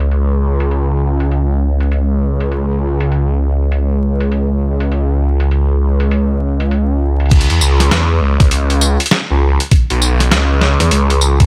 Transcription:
0.00 7.29 C#2 medium
0.00 closed hi-hat medium
0.11 closed hi-hat soft
0.60 closed hi-hat medium
0.71 closed hi-hat soft
1.20 closed hi-hat medium
1.31 closed hi-hat soft
1.80 closed hi-hat medium
1.92 closed hi-hat medium
2.40 closed hi-hat medium
2.52 closed hi-hat soft
3.00 closed hi-hat medium
3.12 closed hi-hat medium
3.72 closed hi-hat soft
4.20 closed hi-hat medium
4.32 closed hi-hat medium
4.80 closed hi-hat medium
4.92 closed hi-hat soft
5.40 closed hi-hat medium
5.51 closed hi-hat medium
6.00 closed hi-hat medium
6.11 closed hi-hat medium
6.60 closed hi-hat medium
6.71 closed hi-hat medium
7.20 closed hi-hat soft
7.26 closed hi-hat soft
7.31 7.47 C#2 loud
7.31 kick loud
7.31 closed hi-hat medium
7.31 crash loud
7.41 closed hi-hat medium
7.50 7.60 E2 loud
7.50 closed hi-hat soft
7.61 7.90 C#2 loud
7.61 tambourine medium
7.80 snare medium
7.80 closed hi-hat medium
7.91 8.20 E2 loud
7.91 snare loud
7.91 closed hi-hat medium
8.21 8.37 C#2 loud
8.40 8.97 C#2 medium
8.40 kick loud
8.40 snare medium
8.40 closed hi-hat medium
8.51 closed hi-hat medium
8.70 closed hi-hat soft
8.81 tambourine medium
9.00 closed hi-hat medium
9.06 closed hi-hat medium
9.11 snare loud
9.30 9.57 C#2 medium
9.60 closed hi-hat medium
9.71 kick loud
9.71 closed hi-hat medium
9.90 10.30 B1 loud
9.90 closed hi-hat soft
10.02 tambourine medium
10.20 snare medium
10.20 closed hi-hat medium
10.31 10.77 C#2 loud
10.31 snare loud
10.31 closed hi-hat medium
10.61 snare medium
10.80 10.90 E2 medium
10.80 snare medium
10.80 closed hi-hat medium
10.91 11.46 C#2 medium
10.91 closed hi-hat medium
11.10 closed hi-hat soft
11.21 tambourine medium
11.40 kick loud
11.40 closed hi-hat medium

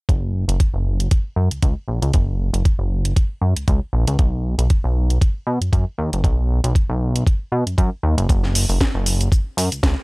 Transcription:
0.09 0.45 F#1 medium
0.09 kick loud
0.09 closed hi-hat soft
0.48 0.58 F#1 medium
0.48 closed hi-hat medium
0.60 kick medium
0.60 closed hi-hat soft
0.74 1.08 F#1 medium
1.00 closed hi-hat medium
1.11 kick loud
1.11 closed hi-hat soft
1.36 1.49 F#2 medium
1.51 1.60 C#2 soft
1.51 closed hi-hat medium
1.62 1.75 C#2 loud
1.62 kick loud
1.62 closed hi-hat soft
1.88 2.00 A#1 medium
2.02 2.12 C#2 medium
2.02 closed hi-hat medium
2.14 2.50 F#1 medium
2.14 kick loud
2.14 closed hi-hat soft
2.53 2.63 F#1 medium
2.53 closed hi-hat medium
2.65 kick loud
2.65 closed hi-hat soft
2.79 3.13 F#1 medium
3.05 closed hi-hat medium
3.16 kick loud
3.16 closed hi-hat soft
3.41 3.54 F#2 medium
3.56 3.65 C#2 soft
3.56 closed hi-hat medium
3.68 3.80 C#2 medium
3.68 kick medium
3.68 closed hi-hat soft
3.93 4.05 A#1 medium
4.07 4.17 C#2 medium
4.07 closed hi-hat medium
4.19 4.55 B1 medium
4.19 kick loud
4.19 closed hi-hat soft
4.58 4.68 B1 medium
4.58 closed hi-hat medium
4.70 kick loud
4.70 closed hi-hat soft
4.84 5.19 B1 medium
5.10 closed hi-hat medium
5.21 kick loud
5.21 closed hi-hat soft
5.47 5.59 B2 medium
5.61 5.70 F#2 soft
5.61 closed hi-hat medium
5.73 5.85 F#2 medium
5.73 kick loud
5.73 closed hi-hat soft
5.98 6.10 D#2 medium
6.12 6.22 F#1 medium
6.12 closed hi-hat medium
6.24 6.60 B1 medium
6.24 kick loud
6.24 closed hi-hat soft
6.64 6.74 B1 medium
6.64 closed hi-hat medium
6.75 kick loud
6.75 closed hi-hat soft
6.90 7.24 B1 medium
7.16 closed hi-hat medium
7.27 kick loud
7.27 closed hi-hat soft
7.52 7.64 B2 medium
7.66 7.76 F#2 soft
7.66 closed hi-hat medium
7.78 7.90 F#2 loud
7.78 kick loud
7.78 closed hi-hat soft
8.03 8.16 D#2 medium
8.18 8.27 F#1 medium
8.18 closed hi-hat medium
8.29 8.66 F#1 medium
8.29 kick loud
8.29 closed hi-hat soft
8.29 shaker soft
8.44 snare soft
8.55 open hi-hat loud
8.55 shaker medium
8.69 8.79 F#1 medium
8.69 open hi-hat medium
8.69 shaker soft
8.81 kick medium
8.81 snare loud
8.81 closed hi-hat soft
8.81 shaker soft
8.95 9.29 F#1 medium
9.06 open hi-hat loud
9.06 shaker medium
9.21 closed hi-hat medium
9.21 shaker soft
9.32 kick loud
9.32 closed hi-hat soft
9.32 shaker soft
9.57 9.69 F#2 medium
9.57 open hi-hat loud
9.57 shaker medium
9.72 9.81 C#2 soft
9.72 closed hi-hat medium
9.72 shaker soft
9.83 9.95 C#2 loud
9.83 kick loud
9.83 snare loud
9.83 closed hi-hat soft
9.83 shaker soft

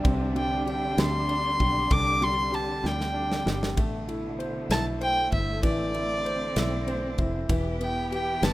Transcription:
0.00 3.79 G2 medium
0.00 7.46 D3 medium
0.00 0.35 G3 medium
0.00 3.73 G3 medium
0.00 1.86 C4 medium
0.00 0.63 D4 medium
0.00 3.73 D4 medium
0.00 0.66 G4 medium
0.00 3.79 D5 medium
0.00 3.79 E5 medium
0.00 3.79 G5 medium
0.05 0.94 C2 loud
0.05 kick loud
0.05 ride medium
0.35 0.97 G3 medium
0.35 0.65 G5 medium
0.35 ride soft
0.66 1.87 G4 medium
0.66 1.01 G5 medium
0.66 ride soft
0.97 1.56 D2 medium
0.97 1.59 G3 medium
0.97 1.94 C6 loud
0.97 snare loud
0.97 ride medium
1.29 2.49 D4 medium
1.29 ride soft
1.60 1.89 B1 medium
1.60 2.20 G3 medium
1.60 kick medium
1.60 ride soft
1.91 2.80 C2 loud
1.91 3.73 D3 medium
1.91 2.25 D6 loud
1.91 kick loud
1.91 ride medium
2.22 2.82 G3 medium
2.22 2.56 C6 loud
2.22 ride soft
2.52 3.73 G4 medium
2.52 2.88 A5 medium
2.52 ride soft
2.84 3.42 D2 medium
2.84 3.45 G3 medium
2.84 3.55 G5 medium
2.84 snare medium
3.01 snare medium
3.14 3.75 D4 medium
3.32 snare medium
3.46 3.77 G1 medium
3.46 3.76 G3 medium
3.46 snare loud
3.63 snare medium
3.77 4.66 A1 loud
3.77 5.62 B2 medium
3.77 5.59 A3 medium
3.77 7.46 A3 medium
3.77 kick loud
3.77 ride medium
4.08 4.69 E4 medium
4.08 ride soft
4.39 4.99 C5 medium
4.39 ride soft
4.70 5.28 B1 medium
4.70 5.30 E4 medium
4.70 4.85 A5 loud
4.70 snare loud
4.70 ride medium
5.01 6.21 C5 medium
5.01 5.30 G5 loud
5.01 ride soft
5.32 5.63 G1 medium
5.32 5.93 E4 medium
5.32 5.61 E5 medium
5.32 kick medium
5.32 ride soft
5.63 6.52 A1 loud
5.63 7.46 E3 medium
5.63 7.48 C4 medium
5.63 7.15 D5 medium
5.63 kick loud
5.63 ride medium
5.94 6.56 E4 medium
5.94 ride soft
6.25 6.86 C5 medium
6.25 ride soft
6.56 7.15 B1 medium
6.56 7.17 E4 medium
6.56 snare loud
6.56 ride medium
6.88 7.48 C5 medium
6.88 ride soft
7.18 7.48 F1 medium
7.18 7.49 E4 medium
7.18 kick medium
7.18 ride soft
7.49 8.39 E1 loud
7.49 8.53 E3 medium
7.49 8.53 B3 medium
7.49 8.53 G4 medium
7.49 kick loud
7.49 ride medium
7.80 8.41 B3 medium
7.80 8.10 G5 medium
7.80 ride soft
8.11 8.53 G4 medium
8.11 8.45 G5 medium
8.11 ride soft
8.42 8.53 G1 medium
8.42 8.53 B3 medium
8.42 8.53 A5 loud
8.42 snare loud
8.42 ride medium

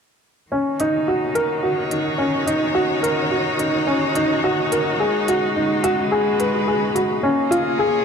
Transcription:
0.51 5.00 D#3 medium
0.51 0.78 C#4 medium
0.80 1.06 D#4 medium
0.80 8.02 D#4 medium
0.80 closed hi-hat medium
1.08 1.34 F#4 medium
1.08 7.24 F#4 medium
1.35 1.62 A#4 medium
1.35 closed hi-hat medium
1.63 1.90 F#4 medium
1.70 5.89 C#5 medium
1.91 2.07 D#4 medium
1.91 closed hi-hat medium
2.18 2.45 C#4 medium
2.47 2.74 D#4 medium
2.47 closed hi-hat medium
2.75 3.02 F#4 medium
3.03 3.30 A#4 medium
3.03 closed hi-hat medium
3.31 3.58 F#4 medium
3.59 3.75 D#4 medium
3.59 closed hi-hat medium
3.87 4.14 C#4 medium
4.15 4.42 D#4 medium
4.15 closed hi-hat medium
4.44 4.70 F#4 medium
4.72 4.98 A#4 medium
4.72 closed hi-hat medium
5.00 7.24 G#3 medium
5.00 5.26 G#4 medium
5.28 5.44 F#4 medium
5.28 closed hi-hat medium
5.56 5.83 D#4 medium
5.84 6.10 F#4 medium
5.84 closed hi-hat medium
6.01 7.24 B4 medium
6.12 6.38 G#4 medium
6.40 6.67 B4 medium
6.40 closed hi-hat medium
6.68 6.94 G#4 medium
6.95 7.12 F#4 medium
6.95 closed hi-hat medium
7.23 8.05 A#3 medium
7.23 7.50 C#4 medium
7.43 8.05 G#4 medium
7.51 7.78 F4 loud
7.51 closed hi-hat medium
7.68 8.05 F4 medium
7.68 8.05 C#5 medium
7.79 8.05 G#4 medium

